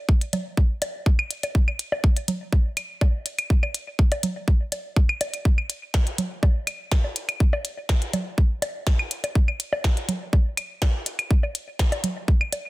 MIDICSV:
0, 0, Header, 1, 2, 480
1, 0, Start_track
1, 0, Tempo, 487805
1, 1525, Time_signature, 4, 2, 24, 8
1, 12492, End_track
2, 0, Start_track
2, 0, Title_t, "Drums"
2, 85, Note_on_c, 9, 36, 111
2, 183, Note_off_c, 9, 36, 0
2, 211, Note_on_c, 9, 42, 38
2, 309, Note_off_c, 9, 42, 0
2, 325, Note_on_c, 9, 42, 98
2, 326, Note_on_c, 9, 60, 41
2, 326, Note_on_c, 9, 64, 82
2, 423, Note_off_c, 9, 42, 0
2, 424, Note_off_c, 9, 60, 0
2, 424, Note_off_c, 9, 64, 0
2, 565, Note_on_c, 9, 36, 119
2, 663, Note_off_c, 9, 36, 0
2, 805, Note_on_c, 9, 42, 101
2, 806, Note_on_c, 9, 60, 78
2, 903, Note_off_c, 9, 42, 0
2, 904, Note_off_c, 9, 60, 0
2, 1045, Note_on_c, 9, 36, 109
2, 1144, Note_off_c, 9, 36, 0
2, 1171, Note_on_c, 9, 75, 80
2, 1269, Note_off_c, 9, 75, 0
2, 1285, Note_on_c, 9, 42, 90
2, 1383, Note_off_c, 9, 42, 0
2, 1411, Note_on_c, 9, 42, 37
2, 1412, Note_on_c, 9, 60, 42
2, 1509, Note_off_c, 9, 42, 0
2, 1510, Note_off_c, 9, 60, 0
2, 1525, Note_on_c, 9, 36, 121
2, 1624, Note_off_c, 9, 36, 0
2, 1652, Note_on_c, 9, 75, 55
2, 1750, Note_off_c, 9, 75, 0
2, 1765, Note_on_c, 9, 42, 95
2, 1863, Note_off_c, 9, 42, 0
2, 1891, Note_on_c, 9, 60, 72
2, 1990, Note_off_c, 9, 60, 0
2, 2005, Note_on_c, 9, 36, 107
2, 2103, Note_off_c, 9, 36, 0
2, 2131, Note_on_c, 9, 42, 38
2, 2229, Note_off_c, 9, 42, 0
2, 2245, Note_on_c, 9, 42, 95
2, 2245, Note_on_c, 9, 64, 84
2, 2343, Note_off_c, 9, 42, 0
2, 2344, Note_off_c, 9, 64, 0
2, 2485, Note_on_c, 9, 36, 123
2, 2485, Note_on_c, 9, 60, 38
2, 2583, Note_off_c, 9, 36, 0
2, 2583, Note_off_c, 9, 60, 0
2, 2725, Note_on_c, 9, 42, 97
2, 2725, Note_on_c, 9, 75, 57
2, 2823, Note_off_c, 9, 42, 0
2, 2824, Note_off_c, 9, 75, 0
2, 2965, Note_on_c, 9, 36, 113
2, 2965, Note_on_c, 9, 60, 74
2, 3063, Note_off_c, 9, 36, 0
2, 3064, Note_off_c, 9, 60, 0
2, 3205, Note_on_c, 9, 42, 92
2, 3303, Note_off_c, 9, 42, 0
2, 3331, Note_on_c, 9, 42, 37
2, 3331, Note_on_c, 9, 75, 60
2, 3430, Note_off_c, 9, 42, 0
2, 3430, Note_off_c, 9, 75, 0
2, 3445, Note_on_c, 9, 36, 120
2, 3544, Note_off_c, 9, 36, 0
2, 3571, Note_on_c, 9, 60, 36
2, 3571, Note_on_c, 9, 75, 53
2, 3670, Note_off_c, 9, 60, 0
2, 3670, Note_off_c, 9, 75, 0
2, 3685, Note_on_c, 9, 42, 92
2, 3783, Note_off_c, 9, 42, 0
2, 3925, Note_on_c, 9, 36, 104
2, 4024, Note_off_c, 9, 36, 0
2, 4051, Note_on_c, 9, 42, 35
2, 4052, Note_on_c, 9, 60, 76
2, 4149, Note_off_c, 9, 42, 0
2, 4150, Note_off_c, 9, 60, 0
2, 4164, Note_on_c, 9, 42, 95
2, 4166, Note_on_c, 9, 64, 77
2, 4263, Note_off_c, 9, 42, 0
2, 4264, Note_off_c, 9, 64, 0
2, 4405, Note_on_c, 9, 36, 121
2, 4504, Note_off_c, 9, 36, 0
2, 4645, Note_on_c, 9, 42, 94
2, 4646, Note_on_c, 9, 60, 37
2, 4743, Note_off_c, 9, 42, 0
2, 4744, Note_off_c, 9, 60, 0
2, 4885, Note_on_c, 9, 36, 106
2, 4983, Note_off_c, 9, 36, 0
2, 5011, Note_on_c, 9, 75, 77
2, 5109, Note_off_c, 9, 75, 0
2, 5125, Note_on_c, 9, 42, 90
2, 5125, Note_on_c, 9, 60, 68
2, 5223, Note_off_c, 9, 42, 0
2, 5223, Note_off_c, 9, 60, 0
2, 5250, Note_on_c, 9, 42, 37
2, 5349, Note_off_c, 9, 42, 0
2, 5365, Note_on_c, 9, 36, 114
2, 5464, Note_off_c, 9, 36, 0
2, 5491, Note_on_c, 9, 75, 52
2, 5589, Note_off_c, 9, 75, 0
2, 5605, Note_on_c, 9, 42, 88
2, 5703, Note_off_c, 9, 42, 0
2, 5845, Note_on_c, 9, 36, 102
2, 5845, Note_on_c, 9, 38, 90
2, 5845, Note_on_c, 9, 60, 38
2, 5943, Note_off_c, 9, 38, 0
2, 5943, Note_off_c, 9, 60, 0
2, 5944, Note_off_c, 9, 36, 0
2, 5971, Note_on_c, 9, 42, 35
2, 6069, Note_off_c, 9, 42, 0
2, 6085, Note_on_c, 9, 42, 92
2, 6085, Note_on_c, 9, 64, 77
2, 6183, Note_off_c, 9, 42, 0
2, 6183, Note_off_c, 9, 64, 0
2, 6325, Note_on_c, 9, 36, 118
2, 6325, Note_on_c, 9, 60, 71
2, 6423, Note_off_c, 9, 60, 0
2, 6424, Note_off_c, 9, 36, 0
2, 6564, Note_on_c, 9, 75, 55
2, 6565, Note_on_c, 9, 42, 89
2, 6662, Note_off_c, 9, 75, 0
2, 6663, Note_off_c, 9, 42, 0
2, 6805, Note_on_c, 9, 36, 100
2, 6805, Note_on_c, 9, 38, 85
2, 6903, Note_off_c, 9, 36, 0
2, 6903, Note_off_c, 9, 38, 0
2, 6930, Note_on_c, 9, 60, 37
2, 7029, Note_off_c, 9, 60, 0
2, 7045, Note_on_c, 9, 42, 89
2, 7143, Note_off_c, 9, 42, 0
2, 7170, Note_on_c, 9, 75, 56
2, 7171, Note_on_c, 9, 42, 35
2, 7268, Note_off_c, 9, 75, 0
2, 7269, Note_off_c, 9, 42, 0
2, 7285, Note_on_c, 9, 36, 118
2, 7383, Note_off_c, 9, 36, 0
2, 7410, Note_on_c, 9, 60, 79
2, 7508, Note_off_c, 9, 60, 0
2, 7525, Note_on_c, 9, 42, 88
2, 7623, Note_off_c, 9, 42, 0
2, 7765, Note_on_c, 9, 36, 100
2, 7765, Note_on_c, 9, 38, 92
2, 7863, Note_off_c, 9, 36, 0
2, 7863, Note_off_c, 9, 38, 0
2, 7890, Note_on_c, 9, 42, 33
2, 7989, Note_off_c, 9, 42, 0
2, 8004, Note_on_c, 9, 60, 41
2, 8004, Note_on_c, 9, 64, 80
2, 8005, Note_on_c, 9, 42, 85
2, 8103, Note_off_c, 9, 42, 0
2, 8103, Note_off_c, 9, 60, 0
2, 8103, Note_off_c, 9, 64, 0
2, 8245, Note_on_c, 9, 36, 115
2, 8343, Note_off_c, 9, 36, 0
2, 8484, Note_on_c, 9, 60, 75
2, 8485, Note_on_c, 9, 42, 90
2, 8582, Note_off_c, 9, 60, 0
2, 8583, Note_off_c, 9, 42, 0
2, 8724, Note_on_c, 9, 38, 89
2, 8725, Note_on_c, 9, 36, 105
2, 8823, Note_off_c, 9, 36, 0
2, 8823, Note_off_c, 9, 38, 0
2, 8850, Note_on_c, 9, 75, 72
2, 8948, Note_off_c, 9, 75, 0
2, 8965, Note_on_c, 9, 42, 82
2, 9063, Note_off_c, 9, 42, 0
2, 9090, Note_on_c, 9, 60, 40
2, 9091, Note_on_c, 9, 42, 34
2, 9188, Note_off_c, 9, 60, 0
2, 9189, Note_off_c, 9, 42, 0
2, 9205, Note_on_c, 9, 36, 109
2, 9303, Note_off_c, 9, 36, 0
2, 9330, Note_on_c, 9, 75, 49
2, 9428, Note_off_c, 9, 75, 0
2, 9445, Note_on_c, 9, 42, 88
2, 9544, Note_off_c, 9, 42, 0
2, 9570, Note_on_c, 9, 60, 81
2, 9668, Note_off_c, 9, 60, 0
2, 9685, Note_on_c, 9, 36, 97
2, 9685, Note_on_c, 9, 38, 93
2, 9783, Note_off_c, 9, 36, 0
2, 9784, Note_off_c, 9, 38, 0
2, 9812, Note_on_c, 9, 42, 36
2, 9910, Note_off_c, 9, 42, 0
2, 9924, Note_on_c, 9, 64, 79
2, 9925, Note_on_c, 9, 42, 83
2, 10022, Note_off_c, 9, 64, 0
2, 10023, Note_off_c, 9, 42, 0
2, 10164, Note_on_c, 9, 36, 109
2, 10164, Note_on_c, 9, 60, 38
2, 10262, Note_off_c, 9, 60, 0
2, 10263, Note_off_c, 9, 36, 0
2, 10404, Note_on_c, 9, 75, 53
2, 10405, Note_on_c, 9, 42, 92
2, 10503, Note_off_c, 9, 75, 0
2, 10504, Note_off_c, 9, 42, 0
2, 10644, Note_on_c, 9, 36, 95
2, 10644, Note_on_c, 9, 60, 80
2, 10645, Note_on_c, 9, 38, 92
2, 10743, Note_off_c, 9, 36, 0
2, 10743, Note_off_c, 9, 38, 0
2, 10743, Note_off_c, 9, 60, 0
2, 10885, Note_on_c, 9, 42, 85
2, 10983, Note_off_c, 9, 42, 0
2, 11010, Note_on_c, 9, 75, 54
2, 11011, Note_on_c, 9, 42, 32
2, 11108, Note_off_c, 9, 75, 0
2, 11110, Note_off_c, 9, 42, 0
2, 11125, Note_on_c, 9, 36, 117
2, 11223, Note_off_c, 9, 36, 0
2, 11249, Note_on_c, 9, 60, 41
2, 11348, Note_off_c, 9, 60, 0
2, 11365, Note_on_c, 9, 42, 85
2, 11463, Note_off_c, 9, 42, 0
2, 11605, Note_on_c, 9, 36, 102
2, 11605, Note_on_c, 9, 38, 98
2, 11703, Note_off_c, 9, 36, 0
2, 11703, Note_off_c, 9, 38, 0
2, 11730, Note_on_c, 9, 60, 86
2, 11731, Note_on_c, 9, 42, 35
2, 11828, Note_off_c, 9, 60, 0
2, 11829, Note_off_c, 9, 42, 0
2, 11844, Note_on_c, 9, 64, 82
2, 11845, Note_on_c, 9, 42, 85
2, 11943, Note_off_c, 9, 42, 0
2, 11943, Note_off_c, 9, 64, 0
2, 12085, Note_on_c, 9, 36, 112
2, 12183, Note_off_c, 9, 36, 0
2, 12211, Note_on_c, 9, 75, 67
2, 12309, Note_off_c, 9, 75, 0
2, 12324, Note_on_c, 9, 42, 89
2, 12325, Note_on_c, 9, 60, 39
2, 12423, Note_off_c, 9, 42, 0
2, 12423, Note_off_c, 9, 60, 0
2, 12492, End_track
0, 0, End_of_file